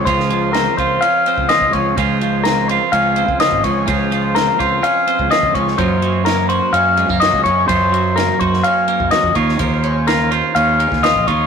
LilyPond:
<<
  \new Staff \with { instrumentName = "Clean electric guitar" } { \time 4/4 \key des \major \tempo 4 = 126 c''4 bes'8 c''8 f''4 ees''8 des''8 | c''4 bes'8 c''8 f''4 ees''8 des''8 | c''4 bes'8 c''8 f''4 ees''8 des''8 | c''4 bes'8 c''8 f''4 ees''8 des''8 |
c''4 bes'8 c''8 f''4 ees''8 des''8 | c''4 bes'8 c''8 f''4 ees''8 des''8 | }
  \new Staff \with { instrumentName = "Clean electric guitar" } { \time 4/4 \key des \major << { f'4 c'8 f'8 des'8 c'4 des'8 | f'4 c'8 f'8 des'8 c'4 des'8 | f'4 c'8 f'8 des'8 c'4 des'8 | <ges bes des' f'>4 bes8 ges'8 des'8 aes16 bes8. des'8 |
f'4 bes8 ges'8 des'8 bes4 f'8~ | f'8 des'8 f'8 f'8 des'4 f'8 f'8 | } \\ { des8 f2~ f8 f4 | des8 f2~ f8 f4 | des8 f2~ f8 f4 | ges,8 ges2~ ges8 ges4 |
ges,8 ges2~ ges8 ges8 ees8 | bes2~ bes8 bes4 ees8 | } >> }
  \new Staff \with { instrumentName = "Fingered electric bass" } { \clef bass \time 4/4 \key des \major des,4. des,8 r8. des,16 r16 des,16 des,8 | des,2 des,8. des,8 aes,,16 des,8 | des,4. des,8 r8. des,16 r16 des,16 des,8 | ges,2 ges,8. ges,8 des,16 ges,8 |
ges,4. ges,8 r8. ges,16 r16 f,16 ees,8 | ees,2 ees,8. ees,8 bes,,16 ees,8 | }
  \new DrumStaff \with { instrumentName = "Drums" } \drummode { \time 4/4 <bd cymr>16 sn16 cymr8 <cymr sn>8 <bd cymr>8 cymr8 cymr16 bd16 <cymr sn>16 bd16 <bd cymr>8 | <bd cymr>8 cymr8 <cymr sn>8 cymr8 cymr8 cymr16 bd16 <cymr sn>16 bd16 <bd cymr>8 | <bd cymr>8 cymr8 <cymr sn>8 <bd cymr>8 cymr8 cymr16 bd16 <cymr sn>16 bd16 <bd cymr>16 sn16 | <bd cymr>8 cymr8 <cymr sn>8 cymr8 cymr8 cymr16 bd16 <cymr sn>16 bd16 <bd cymr>8 |
<bd cymr>8 cymr8 <cymr sn>8 <bd cymr>16 sn16 cymr8 cymr16 bd16 <cymr sn>16 bd16 <bd cymr>16 sn16 | <bd cymr>8 cymr8 <cymr sn>8 cymr8 cymr8 cymr16 <bd sn>16 <cymr sn>16 bd16 <bd cymr>8 | }
>>